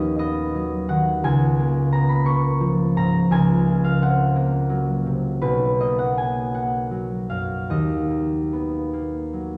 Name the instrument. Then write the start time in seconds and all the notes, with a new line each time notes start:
harp
Already playing: D#2 B3 C#4 D#5 F5 F#5
0.19 B3 D#5
0.55 F#3
0.89 D#3 F#5
1.24 C#2 G#5
1.59 A#3
1.93 B3 A#5
2.09 B5
2.25 A#3 C#6
2.60 F3
2.97 G#2 A#5
3.31 C#2 G#5
3.68 A#3
3.84 F5
4.02 C4 F#5
4.35 A#3
4.69 F#3
5.06 C3
5.42 B1 B4
5.80 A#3 D#5
5.99 F#5
6.17 B3 G#5
6.54 A#3 F#5
6.91 F#3
7.30 F#2 F5
7.70 D#2 D#5
8.11 A#3
8.53 B3
8.93 A#3
9.33 F#3